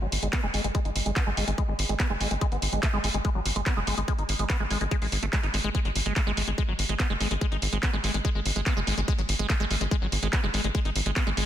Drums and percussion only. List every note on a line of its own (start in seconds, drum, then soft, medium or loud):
0.12 open hi-hat loud
0.23 closed hi-hat medium
0.33 kick loud
0.33 clap loud
0.33 closed hi-hat medium
0.54 open hi-hat loud
0.64 closed hi-hat medium
0.75 kick loud
0.75 closed hi-hat medium
0.85 closed hi-hat soft
0.96 open hi-hat loud
1.06 closed hi-hat medium
1.16 kick loud
1.16 clap loud
1.16 closed hi-hat medium
1.37 open hi-hat loud
1.48 closed hi-hat medium
1.58 kick loud
1.58 closed hi-hat medium
1.79 open hi-hat loud
1.89 closed hi-hat medium
2.00 kick loud
2.00 clap loud
2.00 closed hi-hat medium
2.21 open hi-hat loud
2.31 closed hi-hat medium
2.41 kick loud
2.41 closed hi-hat medium
2.52 closed hi-hat soft
2.62 open hi-hat loud
2.73 closed hi-hat medium
2.83 kick loud
2.83 clap loud
2.83 closed hi-hat medium
3.04 open hi-hat loud
3.14 closed hi-hat medium
3.25 kick loud
3.25 closed hi-hat medium
3.46 open hi-hat loud
3.56 closed hi-hat medium
3.66 kick loud
3.66 clap loud
3.66 closed hi-hat medium
3.87 open hi-hat loud
3.98 closed hi-hat medium
4.08 kick loud
4.08 closed hi-hat medium
4.18 closed hi-hat soft
4.29 open hi-hat loud
4.39 closed hi-hat soft
4.50 kick loud
4.50 clap loud
4.50 closed hi-hat medium
4.71 open hi-hat loud
4.81 closed hi-hat medium
4.91 kick loud
4.91 closed hi-hat medium
5.02 open hi-hat medium
5.12 open hi-hat loud
5.23 closed hi-hat medium
5.33 kick loud
5.33 clap loud
5.33 closed hi-hat medium
5.43 closed hi-hat soft
5.54 open hi-hat loud
5.64 closed hi-hat soft
5.75 kick loud
5.75 closed hi-hat medium
5.85 closed hi-hat soft
5.96 open hi-hat loud
6.06 closed hi-hat soft
6.16 kick loud
6.16 clap loud
6.16 closed hi-hat medium
6.37 open hi-hat loud
6.48 closed hi-hat medium
6.58 kick loud
6.58 closed hi-hat medium
6.79 open hi-hat loud
6.89 closed hi-hat medium
7.00 kick loud
7.00 clap loud
7.00 closed hi-hat medium
7.21 open hi-hat loud
7.31 closed hi-hat medium
7.41 kick loud
7.41 closed hi-hat medium
7.52 closed hi-hat soft
7.62 open hi-hat loud
7.73 closed hi-hat medium
7.83 kick loud
7.83 clap loud
7.83 closed hi-hat medium
8.04 open hi-hat loud
8.14 closed hi-hat medium
8.25 kick loud
8.25 closed hi-hat medium
8.46 open hi-hat loud
8.56 closed hi-hat medium
8.66 kick loud
8.66 clap loud
8.66 closed hi-hat medium
8.87 open hi-hat loud
8.98 closed hi-hat medium
9.08 kick loud
9.08 closed hi-hat medium
9.18 closed hi-hat soft
9.29 open hi-hat loud
9.39 closed hi-hat medium
9.50 kick loud
9.50 clap loud
9.50 closed hi-hat medium
9.71 open hi-hat loud
9.81 closed hi-hat medium
9.91 kick loud
9.91 closed hi-hat medium
10.12 open hi-hat loud
10.23 closed hi-hat medium
10.33 kick loud
10.33 clap loud
10.33 closed hi-hat medium
10.54 open hi-hat loud
10.64 closed hi-hat medium
10.75 kick loud
10.75 closed hi-hat medium
10.85 closed hi-hat soft
10.96 open hi-hat loud
11.06 closed hi-hat medium
11.16 kick loud
11.16 clap loud
11.16 closed hi-hat medium
11.27 closed hi-hat soft
11.37 open hi-hat loud